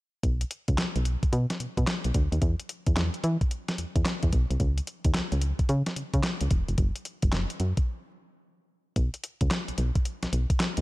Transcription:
0.23 B1, kick, closed hi-hat
0.41 closed hi-hat
0.51 closed hi-hat
0.68 C#2, kick, closed hi-hat
0.78 snare, clap, closed hi-hat
0.96 B1, closed hi-hat
1.05 closed hi-hat
1.23 kick, closed hi-hat
1.33 B2, closed hi-hat
1.50 snare, closed hi-hat
1.60 B2, closed hi-hat
1.77 B2, kick, closed hi-hat
1.87 snare, clap, closed hi-hat
2.04 B1, closed hi-hat
2.14 D2, kick, closed hi-hat
2.32 D#2, closed hi-hat
2.42 E2, kick, closed hi-hat
2.60 closed hi-hat
2.69 closed hi-hat
2.86 E2, kick, closed hi-hat
2.96 E2, snare, clap, closed hi-hat
3.14 closed hi-hat
3.24 E3, closed hi-hat
3.41 kick, closed hi-hat
3.51 closed hi-hat
3.68 snare, closed hi-hat
3.78 E2, closed hi-hat
3.96 E2, kick, closed hi-hat
4.05 snare, clap, closed hi-hat
4.23 E2, kick, closed hi-hat
4.33 B1, kick, closed hi-hat
4.50 C2, closed hi-hat
4.60 C#2, kick, closed hi-hat
4.78 closed hi-hat
4.87 closed hi-hat
5.05 D#2, kick, closed hi-hat
5.14 C#2, snare, clap, closed hi-hat
5.32 C#2, closed hi-hat
5.42 closed hi-hat
5.59 kick, closed hi-hat
5.69 C#3, closed hi-hat
5.86 snare, closed hi-hat
5.96 C#3, closed hi-hat
6.14 C#3, kick, closed hi-hat
6.23 snare, clap, closed hi-hat
6.41 C#2, closed hi-hat
6.51 E1, kick, closed hi-hat
6.68 F1, closed hi-hat
6.78 F#1, kick, closed hi-hat
6.96 closed hi-hat
7.05 closed hi-hat
7.22 F#1, kick, closed hi-hat
7.32 F#1, snare, clap, closed hi-hat
7.50 closed hi-hat
7.60 F#2, closed hi-hat
7.77 kick, closed hi-hat
8.96 B1, kick, closed hi-hat
9.14 closed hi-hat
9.24 closed hi-hat
9.41 C#2, kick, closed hi-hat
9.51 snare, clap, closed hi-hat
9.68 B1, closed hi-hat
9.78 B1, closed hi-hat
9.95 kick, closed hi-hat
10.05 closed hi-hat
10.23 B1, snare, closed hi-hat
10.33 B1, closed hi-hat
10.50 kick, closed hi-hat
10.60 snare, clap, closed hi-hat
10.77 D#2, closed hi-hat

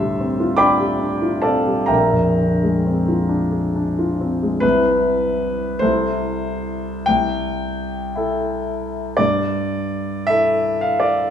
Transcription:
Already playing: D2 A2 D3 E5 A5 C6 E6
0.00 G3
0.20 C4
0.40 F4
0.57 D4 D5 G5 B5 D6
0.79 G4
0.99 D4
1.22 F4
1.42 C4 A4 D5 F5 A5
1.66 G3
1.86 A#1 A#4 E5 G5 A#5
2.13 F2
2.38 D3
2.63 G#3
2.86 C4
3.08 F4
3.29 D4
3.52 G#4
3.76 D4
3.99 F4
4.21 C4
4.43 G#3
4.60 C2 C4 E4 B4
5.79 C2 E4 A4 C5
7.06 C2 G5
8.16 E4 A4
9.17 G2 D5
10.27 E4 A4 E5
10.81 F5
11.00 D5

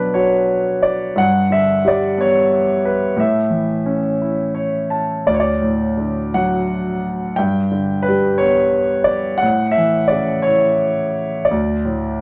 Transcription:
Already playing: B2 F#3 D4 B4 D5
0.14 F#4 C#5
0.82 D5
1.16 G2 F#5
1.50 D3 E5
1.85 G3 D5
2.18 B3 C#5
2.85 B4
3.16 A2 E5
3.50 E3
3.86 C#4
4.22 E4
4.55 C#5
4.90 A5
5.26 D2 D5
5.34 C#5
5.40 D5
5.62 A2
5.97 D3
6.34 F#3 F#5
7.36 G2 G5
7.71 D3
8.03 B4
8.08 G3
8.38 B3 C#5
9.04 D5
9.38 F#5
9.42 A2
9.71 E5
9.77 E3
10.08 C#3 D5
10.42 C#5
10.47 E4
11.45 D5
11.51 D2
11.85 A2

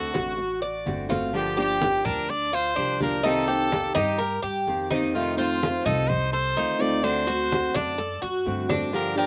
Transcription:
Already playing: D3 A3 C4 F#4 A4
0.14 A1 F#4, high conga
0.37 muted nylon-string guitar stroke, high conga
0.62 D5, high conga
0.85 G1 D3 A3 C4 F#4, high conga
1.09 A3 C4 F4 F#4, high conga
1.33 D3 F3 A#3 D4 G4, high conga
1.57 F3 A#3 D4 G4, high conga
1.82 F3 A#3 D4 G4, high conga
2.05 D2 D4 A#4, high conga, low conga
2.29 D5, muted nylon-string guitar stroke, high conga
2.53 F4 C5, high conga
2.76 C2 F3 A#3 D4 G4, high conga
3.00 F3 A#3 D4 G4 A#4, high conga
3.23 C3 D#3 A#3 C4 D#4 G4 A4, high conga
3.48 D#3 A#3 C4 G4, high conga
3.72 D#3 A#3 C4 G4, high conga
3.95 G2 D#4 G4, high conga
4.18 A#4, muted nylon-string guitar stroke, high conga
4.43 G2 G4, high conga
4.67 F2 D#3 A#3 C4 G4, high conga
4.90 D#3 A#3 C4 D#4 G4, high conga
5.14 C3 D#3 A3 C4 F4, high conga
5.37 D#3 A3 C4 F4 C5, high conga
5.61 D#3 A3 C4 F4, high conga
5.85 C2 D#4 A4, high conga, low conga
6.09 C5, muted nylon-string guitar stroke, high conga, low conga
6.33 A4 C5, high conga
6.56 D2 D#3 A3 C4 D#4 F4, high conga
6.79 D#3 A3 C4 F4 D5
7.02 D3 A3 C4 D4 F#4 C5, high conga
7.27 A3 C4 F#4, high conga
7.51 D3 A3 C4 F#4, high conga
7.74 F#2 D4 D5, high conga
7.98 A4, muted nylon-string guitar stroke, high conga
8.22 F#2 F#4, high conga
8.46 G2 D3 A3 C4 F#4, high conga
8.69 A3 C4 D4 F#4, high conga
8.92 D3 F3 A#3 D4 G4 A#4, high conga
9.16 F3 A#3 D4 G4 A#4, high conga

